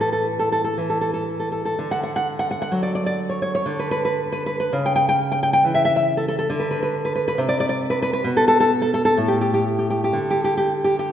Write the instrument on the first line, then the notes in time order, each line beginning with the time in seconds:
nylon-string guitar
Already playing: A2 E3
0.01 A4
0.12 A4
0.39 A4
0.52 A4
0.64 A4
0.78 E3
0.90 A4
1.01 A4
1.14 A4
1.40 A4
1.52 A4
1.65 A4
1.79 D3
1.91 F#5
2.03 F#5
2.16 F#5
2.39 F#5
2.51 F#5
2.62 F#5
2.72 F#3
2.83 D5
2.95 D5
3.06 D5
3.29 C#5
3.42 C#5
3.55 C#5
3.66 D3
3.79 B4
3.91 B4
4.05 B4
4.32 B4
4.46 B4
4.60 B4
4.73 C#3
4.86 G5
4.96 G5
5.09 G5
5.32 G5
5.43 G5
5.53 G5
5.64 E3
5.74 E5
5.85 E5
5.96 E5
6.17 A4
6.28 A4
6.39 A4
6.50 D3
6.60 B4
6.71 B4
6.83 B4
7.05 B4
7.15 B4
7.28 B4
7.38 C3
7.49 D5
7.60 D5
7.69 D5
7.90 B4
8.02 B4
8.13 B4
8.24 B2
8.37 A4
8.48 A4
8.60 A4
8.82 A4
8.94 A4
9.05 A4
9.17 A2
9.28 G4
9.41 G4
9.54 G4
9.79 G4
9.90 G4
10.04 G4
10.13 D3
10.30 G4
10.44 G4
10.57 G4
10.84 G4
10.99 G4